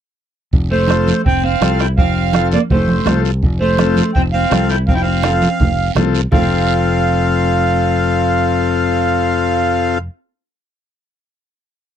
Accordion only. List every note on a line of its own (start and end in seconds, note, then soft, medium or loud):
0.71 1.21 C5 medium
1.26 1.44 G5 loud
1.44 1.81 F5 medium
1.80 1.88 G5 medium
1.98 2.48 F5 loud
2.54 2.61 D5 medium
2.72 3.21 C5 medium
3.60 4.11 C5 medium
4.14 4.22 G5 medium
4.33 4.70 F5 loud
4.70 4.78 G5 medium
4.88 4.94 F5 medium
4.95 5.01 G5 medium
5.02 5.92 F5 medium
6.33 9.99 F5 loud